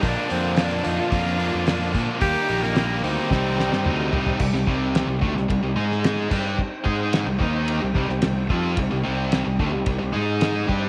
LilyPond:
<<
  \new Staff \with { instrumentName = "Tonewheel organ" } { \time 4/4 \key c \minor \tempo 4 = 110 <f bes d' f'>1 | <g bes ees' g'>2 <g c' ees' g'>2 | <g c' ees' g'>2~ <g c' ees' g'>8 <aes ees' aes' ees''>4 <c' ees' c'' g''>8~ | <c' ees' c'' g''>2.~ <c' ees' c'' g''>8 <c' ees' g'>8~ |
<c' ees' g'>2~ <c' ees' g'>8 <aes ees' aes' ees''>4 <c' ees' g' c''>8 | }
  \new Staff \with { instrumentName = "Tenor saxophone" } { \time 4/4 \key c \minor d'8 c'8 d'8 ees'16 f'4.~ f'16 r8 | g'8. bes8. c'2 r8 | r1 | r1 |
r1 | }
  \new Staff \with { instrumentName = "Distorted electric guitar" } { \clef bass \time 4/4 \key c \minor <bes, d f bes d'>8 <bes, d f bes d'>8 <bes, d f bes d'>8 <bes, d f bes d'>8 <bes, d f bes d'>8 <bes, d f bes d'>8 <bes, d f bes d'>8 <bes, d f bes d'>8 | <ees g bes ees'>8 <ees g bes ees'>8 <ees g bes ees'>8 <ees g bes ees'>8 <c g c' ees'>8 <c g c' ees'>8 <c g c' ees'>8 <c g c' ees'>8 | <c g>16 <c g>16 <c g c'>8. <c g>16 <d a>16 <c g>16 <c g>16 <c g>16 <aes ees' aes'>4 <g d' g'>8 | r8 <aes ees' aes'>8. <c g>16 <ees bes ees'>8. <c g>16 <c g>16 <c g>16 <c g>8 <f c' f'>8 |
<c g>16 <c g>16 <c g c'>8. <c g>16 <d a>16 <c g>16 <c g>16 <c g>16 <aes ees' aes'>4 <g d' g'>8 | }
  \new Staff \with { instrumentName = "Overdriven electric guitar" } { \clef bass \time 4/4 \key c \minor <bes, d bes d' f'>8 <bes, d bes d' f'>8 <bes, d bes d' f'>8 <bes, d bes d' f'>8 <bes, d bes d' f'>8 <bes, d bes d' f'>8 <bes, d bes d' f'>8 <bes, d bes d' f'>8 | <ees bes ees' g'>8 <ees bes ees' g'>8 <ees bes ees' g'>8 <ees bes ees' g'>8 <c ees g ees' g'>8 <c ees g ees' g'>8 <c ees g ees' g'>8 <c ees g ees' g'>8 | <c g>16 <c g>16 <c g c'>8. <c g>16 <d a>16 <c g>16 <c g>16 <c g>16 <aes ees' aes'>4 <g d' g'>8 | r8 <aes ees' aes'>8. <c g>16 <ees bes ees'>8. <c g>16 <c g>16 <c g>16 <c g>8 <f c' f'>8 |
<c g>16 <c g>16 <c g c'>8. <c g>16 <d a>16 <c g>16 <c g>16 <c g>16 <aes ees' aes'>4 <g d' g'>8 | }
  \new Staff \with { instrumentName = "Fingered electric bass" } { \clef bass \time 4/4 \key c \minor bes,,16 r16 f,4 f,16 r16 f,8. f,8. bes,16 r16 | ees,16 r16 bes,,4 d,16 r16 c,8. g,16 d,8 c,8 | c,16 c,16 c,8. c,16 d,16 c,16 c,16 c,16 aes,4 g,8 | r8 aes,8. c,16 ees,8. c,16 c,16 c,16 c,8 f,8 |
c,16 c,16 c,8. c,16 d,16 c,16 c,16 c,16 aes,4 g,8 | }
  \new DrumStaff \with { instrumentName = "Drums" } \drummode { \time 4/4 <hho bd>8 hho8 <hho sn>8 hho8 <hho bd>16 sn16 hho8 <hho sn>8 <hho bd>8 | <hho bd>8 hho16 sn16 <hho sn>8 hho8 <bd sn>8 sn16 sn16 toml8 tomfh16 tomfh16 | <cymc bd>16 sn16 bd8 <rb sn>8 bd16 sn16 <bd rb>8. sn16 <rb sn>8 <cymc bd>8 | bd8 bd8 <rb sn>8 bd8 rb8 bd16 sn16 <rb sn>8 bd8 |
<bd rb>4 <rb sn>8 bd8 <bd rb>4 <rb sn>8 bd8 | }
>>